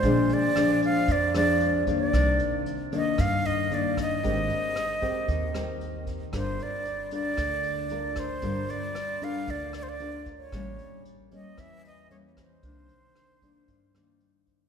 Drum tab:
HH |xxxxxxxx|xxxxxxxx|xxxxxxxx|xxxxxxxx|
SD |--r--r--|r---r--r|--r--r--|r---r--r|
BD |o---o--o|o---o--o|o--oo--o|o---o--o|

HH |xxxxxxxx|xxxxxxxx|xxxxxxxx|
SD |--r--r--|r---r--r|--r--r--|
BD |o---o--o|o---o--o|o--oo--o|